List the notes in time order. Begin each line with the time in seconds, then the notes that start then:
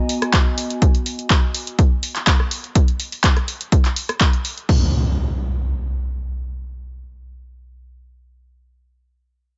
Already playing: B3 F#4 D#5 G#5
0.09 open hi-hat
0.22 cross-stick, closed hi-hat
0.34 kick, clap, closed hi-hat
0.58 open hi-hat
0.70 closed hi-hat
0.82 kick, closed hi-hat
0.95 closed hi-hat
1.06 open hi-hat
1.19 closed hi-hat
1.30 kick, clap, closed hi-hat
1.54 open hi-hat
1.67 closed hi-hat
1.79 kick, closed hi-hat
2.03 open hi-hat
2.16 clap, closed hi-hat
2.27 kick, cross-stick, clap, closed hi-hat
2.40 cross-stick
2.51 open hi-hat
2.64 closed hi-hat
2.75 kick, closed hi-hat
2.88 closed hi-hat
3.00 open hi-hat
3.12 open hi-hat
3.24 kick, clap, closed hi-hat
3.37 cross-stick, closed hi-hat
3.48 open hi-hat
3.61 closed hi-hat
3.72 kick, closed hi-hat
3.85 clap, closed hi-hat
3.96 open hi-hat
4.09 cross-stick, closed hi-hat
4.21 kick, clap, closed hi-hat
4.33 closed hi-hat
4.45 open hi-hat
4.58 closed hi-hat
4.69 kick, crash, impact